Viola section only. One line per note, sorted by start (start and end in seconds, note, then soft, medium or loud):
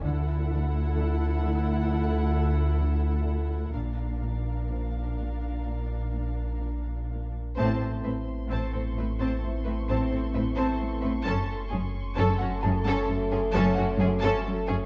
0.07 3.71 E4 medium
3.75 7.33 D4 soft
7.58 7.80 C4 medium
8.05 8.13 C4 soft
8.50 8.72 C4 medium
8.73 8.81 C4 soft
8.98 9.06 C4 soft
9.21 9.42 C4 medium
9.67 9.75 C4 medium
9.90 10.11 C4 medium
10.13 10.21 C4 medium
10.35 10.43 C4 soft
10.57 10.78 C4 medium
11.03 11.11 C4 medium
11.25 11.47 C#4 medium
11.71 11.79 C#4 medium
12.17 12.39 C#4 medium
12.42 12.50 C#4 medium
12.65 12.73 C#4 medium
12.87 13.08 C#4 medium
13.32 13.40 C#4 medium
13.54 13.76 C#4 loud
13.79 13.87 C#4 medium
14.00 14.08 C#4 medium
14.24 14.45 C#4 loud
14.69 14.77 C#4 medium